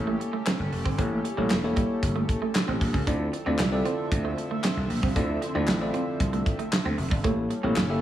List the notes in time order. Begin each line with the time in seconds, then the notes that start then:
Already playing: A1 A#3 C#4 E4 G4 A4 C#5
0.07 A3
0.20 muted clean electric guitar stroke, closed hi-hat
0.33 A3
0.46 C4, snare, clap, closed hi-hat
0.59 G1
0.72 F1, muted clean electric guitar stroke, open hi-hat
0.85 G1 C4, kick
0.98 A1 A3 A#3 E4 G4 A4 C#5, kick, closed hi-hat
1.25 muted clean electric guitar stroke, closed hi-hat
1.37 A1 G3 A#3 E4 G4 A4 C#5
1.50 E1, snare, clap, closed hi-hat
1.64 A#3 E4 G4 A4 C#5
1.76 G3, kick, closed hi-hat
2.03 G1, kick, closed hi-hat
2.16 A3
2.29 muted clean electric guitar stroke, kick, closed hi-hat
2.42 A3
2.55 snare, clap, closed hi-hat
2.68 A1 C4
2.81 A#1, muted clean electric guitar stroke, kick, open hi-hat
2.94 C#2 C#4, kick
3.07 D2 D3 F3 C4 D4 E4 F4 A4 D5 E5, kick, closed hi-hat
3.33 muted clean electric guitar stroke, closed hi-hat
3.46 D2 C4 E4 F4 A4 D5
3.59 C2, snare, clap, closed hi-hat
3.72 C4 E4 F4 A4 D5
3.85 C4, closed hi-hat
4.12 D2, kick, closed hi-hat
4.25 A3
4.38 muted clean electric guitar stroke, closed hi-hat
4.51 A3
4.64 C4, snare, clap, closed hi-hat
4.77 C2
4.90 A#1, muted clean electric guitar stroke, open hi-hat
5.03 C2 C4, kick
5.15 D2 C4 D4 E4 F4 A4 D5, kick, closed hi-hat
5.42 muted clean electric guitar stroke, closed hi-hat
5.55 D2 C4 E4 F4 A4 D5
5.67 A1, snare, clap, closed hi-hat
5.81 C4 E4 F4 A4 D5
5.94 C4, closed hi-hat
6.20 C2, kick, closed hi-hat
6.33 A3, closed hi-hat
6.46 muted clean electric guitar stroke, kick, closed hi-hat
6.59 A3, closed hi-hat
6.72 snare, clap, closed hi-hat
6.85 D2 C4
6.98 F1, muted clean electric guitar stroke, open hi-hat
7.11 G1 D4, kick
7.24 A1 G3 A3 A#3 C#4 E4 G4 A4 C#5, kick, closed hi-hat
7.50 muted clean electric guitar stroke, closed hi-hat
7.63 A1 A#3 C4 E4 G4 A4 C#5
7.76 G1, snare, clap, closed hi-hat
7.89 A#3 E4 G4 A4 E5